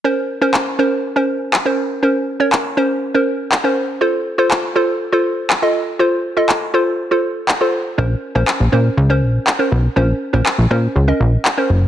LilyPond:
<<
  \new Staff \with { instrumentName = "Synth pluck" } { \time 4/4 \key bes \minor \tempo 4 = 121 <des' bes' c''>16 r8 <des' bes' c''>16 r8 <des' bes' c''>16 r8 <des' bes' c''>8 r8 <des' bes' c''>16 r8 | <des' bes' c''>16 r8 <des' bes' des''>16 r8 <des' bes' c''>16 r8 <des' bes' c''>8 r8 <des' bes' c''>16 r8 | <f' a' c''>16 r8 <f' a' c''>16 r8 <f' a' c''>16 r8 <f' a' c''>8 r8 <f' a' ees''>16 r8 | <f' a' c''>16 r8 <f' a' ees''>16 r8 <f' a' c''>16 r8 <f' a' c''>8 r8 <f' a' c''>16 r8 |
<des' bes' c''>16 r8 <des' bes' c''>16 r8 <des' bes' c''>16 r8 <des' bes' c''>8 r8 <des' bes' c''>16 r8 | <des' bes' c''>16 r8 <des' bes' c''>16 r8 <des' bes' c''>16 r8 <des' bes' ees''>8 r8 <des' bes' c''>16 r8 | }
  \new Staff \with { instrumentName = "Analog synth bass" } { \clef bass \time 4/4 \key bes \minor r1 | r1 | r1 | r1 |
bes,,8 r16 bes,,16 r16 bes,,16 bes,8 des,8 bes,,8 r8 ces,8 | bes,,8 r16 bes,,16 r16 bes,,16 bes,8 des,8 bes,,8 r8 ges,,8 | }
  \new DrumStaff \with { instrumentName = "Drums" } \drummode { \time 4/4 r4 hc4 r4 hc4 | r4 hc4 r4 hc4 | r4 hc4 r4 hc4 | r4 hc4 r4 hc4 |
r4 hc4 r4 hc4 | r4 hc4 r4 hc4 | }
>>